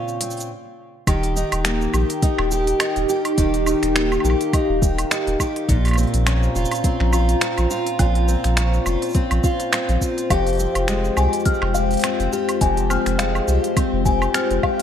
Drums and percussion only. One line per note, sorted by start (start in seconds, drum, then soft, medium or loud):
0.08 shaker soft
0.21 open hi-hat medium
0.21 shaker soft
0.31 shaker soft
0.37 shaker soft
0.40 shaker medium
1.07 kick loud
1.07 open hi-hat medium
1.07 low woodblock medium
1.07 shaker soft
1.23 open hi-hat soft
1.23 shaker soft
1.37 shaker medium
1.52 open hi-hat soft
1.52 low woodblock medium
1.52 shaker soft
1.65 finger snap loud
1.65 open hi-hat medium
1.65 shaker soft
1.81 shaker soft
1.94 low woodblock medium
1.94 shaker medium
2.10 open hi-hat soft
2.10 shaker soft
2.22 kick loud
2.22 open hi-hat medium
2.22 shaker soft
2.38 finger snap soft
2.38 low woodblock medium
2.51 shaker medium
2.67 open hi-hat soft
2.67 shaker soft
2.80 finger snap loud
2.80 open hi-hat medium
2.80 low woodblock medium
2.80 shaker soft
2.96 open hi-hat soft
2.96 shaker soft
3.09 shaker medium
3.25 open hi-hat soft
3.25 low woodblock medium
3.38 kick loud
3.38 open hi-hat medium
3.38 shaker medium
3.54 open hi-hat soft
3.54 shaker soft
3.66 low woodblock medium
3.66 shaker medium
3.83 finger snap soft
3.83 open hi-hat soft
3.83 shaker soft
3.96 finger snap loud
3.96 shaker soft
4.12 low woodblock medium
4.12 shaker soft
4.20 low woodblock medium
4.25 shaker medium
4.30 low woodblock soft
4.41 open hi-hat soft
4.41 shaker soft
4.53 kick loud
4.53 open hi-hat medium
4.53 low woodblock medium
4.53 shaker soft
4.82 kick loud
4.82 shaker medium
4.98 open hi-hat soft
4.98 low woodblock medium
4.98 shaker soft
5.11 finger snap loud
5.11 open hi-hat medium
5.11 shaker soft
5.27 open hi-hat soft
5.27 shaker soft
5.40 kick medium
5.40 low woodblock medium
5.40 shaker medium
5.56 open hi-hat soft
5.69 kick loud
5.69 open hi-hat medium
5.69 shaker medium
5.85 open hi-hat soft
5.85 low woodblock soft
5.85 shaker soft
5.87 open hi-hat soft
5.87 low woodblock soft
5.91 open hi-hat soft
5.91 low woodblock soft
5.93 low woodblock medium
5.96 open hi-hat soft
5.96 low woodblock medium
5.96 shaker medium
6.03 open hi-hat soft
6.07 open hi-hat soft
6.14 open hi-hat soft
6.14 shaker soft
6.27 finger snap loud
6.27 open hi-hat medium
6.27 low woodblock medium
6.27 shaker soft
6.43 shaker soft
6.56 shaker medium
6.65 shaker medium
6.71 open hi-hat soft
6.71 low woodblock medium
6.71 shaker soft
6.75 shaker medium
6.84 kick loud
6.84 open hi-hat medium
6.84 shaker soft
7.00 finger snap soft
7.13 low woodblock medium
7.13 shaker medium
7.29 open hi-hat soft
7.29 shaker soft
7.41 finger snap loud
7.41 open hi-hat medium
7.41 shaker soft
7.58 open hi-hat soft
7.58 low woodblock medium
7.58 shaker soft
7.71 shaker medium
7.87 open hi-hat soft
7.87 shaker soft
7.99 kick loud
7.99 open hi-hat medium
7.99 low woodblock medium
7.99 shaker soft
8.15 open hi-hat soft
8.28 shaker medium
8.44 finger snap soft
8.44 open hi-hat soft
8.44 shaker soft
8.57 finger snap loud
8.57 open hi-hat medium
8.57 shaker soft
8.74 shaker soft
8.86 low woodblock medium
8.86 shaker medium
9.02 open hi-hat soft
9.02 shaker soft
9.05 shaker soft
9.09 shaker soft
9.11 shaker soft
9.13 kick loud
9.13 open hi-hat medium
9.13 shaker soft
9.15 shaker soft
9.31 open hi-hat soft
9.31 low woodblock medium
9.31 shaker soft
9.44 kick loud
9.44 shaker medium
9.60 open hi-hat soft
9.60 shaker soft
9.73 finger snap loud
9.73 open hi-hat medium
9.73 low woodblock medium
9.73 shaker soft
9.89 open hi-hat soft
9.89 shaker soft
10.01 kick medium
10.01 shaker medium
10.18 open hi-hat soft
10.18 shaker soft
10.30 kick loud
10.30 open hi-hat medium
10.30 low woodblock medium
10.30 shaker soft
10.47 open hi-hat soft
10.47 shaker soft
10.49 open hi-hat soft
10.53 open hi-hat soft
10.55 open hi-hat soft
10.57 open hi-hat soft
10.57 shaker medium
10.75 open hi-hat soft
10.75 low woodblock medium
10.75 shaker soft
10.88 finger snap loud
10.88 open hi-hat medium
10.88 shaker soft
11.04 shaker soft
11.17 low woodblock medium
11.17 shaker medium
11.33 open hi-hat soft
11.33 shaker soft
11.40 shaker soft
11.45 kick loud
11.45 open hi-hat medium
11.45 shaker soft
11.54 shaker soft
11.62 finger snap soft
11.62 low woodblock medium
11.75 shaker medium
11.91 open hi-hat soft
11.91 shaker soft
11.93 open hi-hat soft
11.97 open hi-hat soft
11.99 open hi-hat soft
12.01 finger snap loud
12.01 open hi-hat soft
12.04 open hi-hat medium
12.04 low woodblock medium
12.04 shaker soft
12.20 open hi-hat soft
12.20 shaker soft
12.33 shaker medium
12.49 open hi-hat soft
12.49 low woodblock medium
12.49 shaker soft
12.61 kick loud
12.61 open hi-hat medium
12.61 shaker soft
12.77 open hi-hat soft
12.77 shaker soft
12.90 low woodblock medium
12.90 shaker medium
13.06 finger snap soft
13.06 open hi-hat soft
13.06 shaker soft
13.19 finger snap loud
13.19 open hi-hat medium
13.19 shaker soft
13.35 low woodblock medium
13.35 shaker soft
13.48 shaker medium
13.64 open hi-hat soft
13.64 shaker soft
13.77 kick loud
13.77 open hi-hat medium
13.77 low woodblock medium
13.77 shaker soft
14.06 kick loud
14.06 shaker medium
14.22 low woodblock medium
14.22 shaker soft
14.34 finger snap loud
14.34 open hi-hat medium
14.34 shaker soft
14.51 open hi-hat soft
14.51 shaker soft
14.63 kick medium
14.63 low woodblock medium